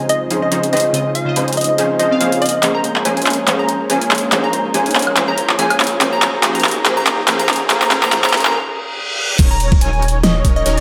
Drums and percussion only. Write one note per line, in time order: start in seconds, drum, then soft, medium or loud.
0.09 closed hi-hat medium
0.31 closed hi-hat medium
0.52 closed hi-hat medium
0.63 closed hi-hat medium
0.73 closed hi-hat soft
0.77 closed hi-hat medium
0.80 closed hi-hat medium
0.94 closed hi-hat medium
1.15 closed hi-hat medium
1.36 closed hi-hat medium
1.48 closed hi-hat soft
1.53 closed hi-hat medium
1.57 closed hi-hat soft
1.61 closed hi-hat medium
1.64 closed hi-hat medium
1.78 closed hi-hat medium
1.99 closed hi-hat medium
2.21 closed hi-hat medium
2.32 closed hi-hat medium
2.42 closed hi-hat soft
2.46 closed hi-hat medium
2.49 closed hi-hat medium
2.63 clap soft
2.63 closed hi-hat medium
2.84 closed hi-hat medium
2.96 clap soft
3.05 closed hi-hat medium
3.17 closed hi-hat soft
3.22 closed hi-hat medium
3.26 clap soft
3.26 closed hi-hat soft
3.30 closed hi-hat medium
3.33 closed hi-hat medium
3.47 clap medium
3.47 closed hi-hat medium
3.69 closed hi-hat medium
3.90 closed hi-hat medium
4.01 closed hi-hat medium
4.11 clap medium
4.11 closed hi-hat soft
4.15 closed hi-hat medium
4.18 closed hi-hat medium
4.32 clap medium
4.32 closed hi-hat medium
4.53 closed hi-hat medium
4.74 closed hi-hat medium
4.86 closed hi-hat soft
4.91 closed hi-hat medium
4.95 clap medium
4.95 closed hi-hat soft
4.99 closed hi-hat medium
5.02 closed hi-hat medium
5.07 high woodblock medium
5.16 clap medium
5.16 closed hi-hat medium
5.38 closed hi-hat medium
5.49 clap medium
5.59 closed hi-hat medium
5.70 closed hi-hat medium
5.70 high woodblock medium
5.80 clap medium
5.80 closed hi-hat soft
5.84 closed hi-hat medium
5.87 closed hi-hat medium
6.01 clap medium
6.01 closed hi-hat medium
6.22 clap medium
6.22 closed hi-hat medium
6.43 clap medium
6.43 closed hi-hat medium
6.55 closed hi-hat soft
6.60 closed hi-hat medium
6.64 clap medium
6.64 closed hi-hat soft
6.68 closed hi-hat medium
6.71 closed hi-hat medium
6.85 clap medium
6.85 closed hi-hat medium
7.07 clap medium
7.07 closed hi-hat medium
7.28 clap medium
7.28 closed hi-hat medium
7.39 closed hi-hat medium
7.49 clap medium
7.49 closed hi-hat soft
7.53 closed hi-hat medium
7.56 closed hi-hat medium
7.70 clap medium
7.70 closed hi-hat medium
7.82 clap medium
7.91 clap medium
7.91 closed hi-hat medium
8.03 clap medium
8.12 clap loud
8.12 closed hi-hat medium
8.24 clap medium
8.24 closed hi-hat medium
8.29 closed hi-hat medium
8.33 clap loud
8.33 closed hi-hat medium
8.37 closed hi-hat medium
8.40 closed hi-hat medium
8.45 clap medium
8.45 high woodblock medium
9.39 kick loud
9.39 closed hi-hat medium
9.39 crash loud
9.60 closed hi-hat medium
9.72 kick loud
9.81 closed hi-hat medium
10.02 closed hi-hat medium
10.08 closed hi-hat medium
10.24 snare loud
10.24 closed hi-hat medium
10.45 kick medium
10.45 closed hi-hat medium
10.66 closed hi-hat medium